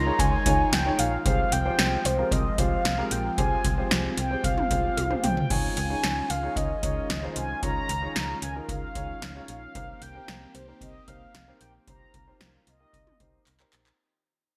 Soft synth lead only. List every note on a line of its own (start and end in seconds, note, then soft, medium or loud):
0.00 0.21 A#5 loud
0.20 0.74 G#5 loud
0.73 1.01 G5 loud
0.99 1.25 F5 loud
1.26 1.54 F5 loud
1.52 2.07 G5 loud
2.05 2.34 C5 medium
2.32 2.60 D#5 medium
2.59 3.13 F5 loud
3.12 3.38 G5 loud
3.38 3.88 G#5 medium
4.18 4.46 G5 medium
4.44 5.23 F5 loud
5.24 5.52 G5 loud
5.50 6.32 G#5 loud
6.30 6.58 F5 loud
6.57 7.36 D#5 loud
7.36 7.61 G#5 loud
7.63 8.38 A#5 loud
8.42 8.54 G#5 loud
8.69 9.45 F5 loud
9.49 10.03 F5 loud
10.02 10.54 G5 loud
10.55 10.67 C5 medium
10.81 11.09 D#5 loud
11.08 11.61 F5 loud
11.61 11.73 G5 medium
11.88 12.37 A#5 loud
12.67 13.43 D#5 loud